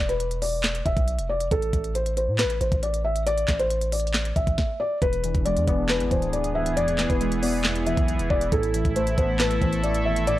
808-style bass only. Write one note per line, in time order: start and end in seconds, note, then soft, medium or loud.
0.00 0.82 E1 loud
0.86 0.96 E1 loud
0.97 1.20 B1 loud
1.19 1.50 F1 medium
1.51 1.72 A1 loud
1.73 2.30 A1 loud
2.28 2.46 A2 loud
2.44 2.60 A1 medium
2.61 2.71 A1 loud
2.72 3.45 A1 loud
3.48 4.33 A1 loud
4.36 4.47 A1 loud
4.47 4.58 A1 loud
5.02 5.33 E1 loud
5.35 5.58 E1 loud
5.57 5.67 E2 loud
5.68 6.02 E1 loud
6.00 6.11 G#1 loud
6.11 7.06 D1 loud
7.10 7.94 E1 loud
7.97 8.21 B1 loud
8.19 8.30 F1 loud
8.30 8.51 E1 loud
8.52 8.84 A1 loud
8.85 9.17 A1 loud
9.18 9.60 A1 loud
9.62 10.07 A1 loud
10.05 10.34 G#1 loud
10.33 10.39 A1 loud